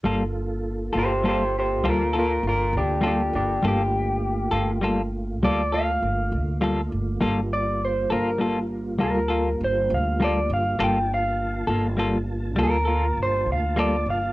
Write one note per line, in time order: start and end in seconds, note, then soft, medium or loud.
0.03 0.90 G1 medium
0.03 0.22 G3 medium
0.03 3.60 A#3 medium
0.03 0.23 A#3 medium
0.03 3.59 F4 medium
0.03 0.23 F4 medium
0.03 3.59 A4 medium
0.03 0.23 A4 medium
0.93 1.85 G1 medium
0.93 1.13 A#3 soft
0.93 1.12 F4 soft
0.93 1.11 A4 soft
0.97 1.26 G4 medium
0.97 1.26 C5 medium
1.24 1.42 G3 medium
1.24 1.42 A#3 medium
1.24 1.42 F4 medium
1.24 1.54 G4 medium
1.24 1.43 A4 medium
1.29 1.55 C5 medium
1.59 1.84 G4 medium
1.59 1.86 C5 medium
1.84 2.40 D2 medium
1.84 2.02 G3 medium
1.84 2.02 A#3 medium
1.84 2.02 F4 medium
1.84 2.02 A4 medium
1.89 2.14 F4 medium
1.89 2.16 A#4 medium
2.13 2.33 A#3 soft
2.13 2.32 F4 soft
2.13 2.31 A4 medium
2.18 2.44 F4 medium
2.18 2.45 A#4 medium
2.43 2.74 G1 medium
2.47 2.73 F4 medium
2.47 2.75 A#4 medium
2.73 3.29 D2 medium
2.77 3.03 D4 medium
2.77 3.05 G4 medium
3.01 3.20 G3 medium
3.01 3.21 A#3 soft
3.01 3.21 F4 medium
3.01 3.21 A4 medium
3.06 3.33 D4 medium
3.06 3.34 G4 medium
3.33 3.61 G1 medium
3.33 3.62 D4 medium
3.33 3.64 G4 medium
3.62 4.48 G1 medium
3.62 3.81 G3 medium
3.62 7.20 A3 medium
3.62 3.82 A#3 medium
3.62 7.19 A#3 medium
3.62 3.82 F4 medium
3.62 7.19 F4 medium
3.62 3.82 A4 medium
3.68 4.82 G4 medium
4.51 5.43 G1 medium
4.51 4.72 A#3 soft
4.51 4.71 F4 soft
4.51 4.70 A4 medium
4.81 5.00 G3 medium
4.81 5.01 A#3 medium
4.81 5.01 F4 medium
4.81 5.01 A4 medium
5.43 5.98 D2 medium
5.43 5.61 G3 medium
5.43 5.61 A#3 medium
5.43 5.62 F4 medium
5.43 5.62 A4 medium
5.43 5.72 D5 medium
5.72 5.91 A#3 soft
5.72 5.91 F4 soft
5.72 5.90 A4 medium
5.72 6.92 F5 medium
6.02 6.33 G1 medium
6.32 6.88 D2 medium
6.61 6.80 G3 medium
6.61 6.80 A#3 medium
6.61 6.80 F4 medium
6.61 6.81 A4 medium
6.92 7.19 G1 medium
6.92 7.48 D5 medium
7.21 8.08 G1 medium
7.21 7.39 G3 medium
7.21 10.76 G3 medium
7.21 7.39 A#3 medium
7.21 10.77 A#3 medium
7.21 7.39 F4 medium
7.21 10.76 F4 medium
7.21 7.40 A4 medium
7.53 7.81 D5 medium
7.85 8.12 C5 medium
8.10 9.02 G1 medium
8.10 8.30 A#3 soft
8.10 8.30 F4 soft
8.10 8.29 A4 soft
8.10 8.41 A#4 medium
8.38 8.58 G3 medium
8.38 8.58 A#3 medium
8.38 8.59 F4 medium
8.38 8.59 A4 medium
8.99 9.57 D2 medium
8.99 9.18 G3 medium
8.99 9.18 A#3 medium
8.99 9.18 F4 medium
8.99 9.19 A4 medium
9.03 9.60 A#4 medium
9.28 9.49 A#3 soft
9.28 9.48 F4 medium
9.28 9.47 A4 soft
9.60 9.92 G1 medium
9.60 9.91 C5 medium
9.90 10.46 D2 medium
9.94 10.21 F5 medium
10.20 10.38 G3 medium
10.20 10.38 A#3 medium
10.20 10.39 F4 medium
10.20 10.39 A4 medium
10.24 10.51 D5 medium
10.50 10.77 G1 medium
10.54 10.81 F5 medium
10.79 11.65 G1 medium
10.79 10.97 G3 medium
10.79 14.33 A#3 medium
10.79 10.97 A#3 medium
10.79 10.98 F4 medium
10.79 14.33 F4 medium
10.79 10.98 A4 medium
10.79 14.33 A5 medium
10.84 11.11 G5 medium
11.14 12.28 F5 medium
11.67 12.58 G1 medium
11.67 11.87 A#3 soft
11.67 11.87 F4 soft
11.67 11.86 A4 medium
11.97 12.16 G3 medium
11.97 12.16 A#3 medium
11.97 12.17 F4 medium
11.97 12.17 A4 medium
12.56 13.14 D2 medium
12.56 12.75 G3 medium
12.56 12.76 A#3 medium
12.56 12.76 F4 medium
12.56 12.76 A4 medium
12.63 13.19 A#4 medium
12.85 13.06 A#3 soft
12.85 13.06 F4 soft
12.85 13.05 A4 soft
13.17 13.48 G1 medium
13.23 13.49 C5 medium
13.46 14.02 D2 medium
13.52 13.79 F5 medium
13.76 13.95 G3 soft
13.76 13.95 A#3 medium
13.76 13.96 F4 medium
13.76 13.96 A4 medium
13.76 14.08 D5 medium
14.06 14.33 G1 medium
14.10 14.33 F5 medium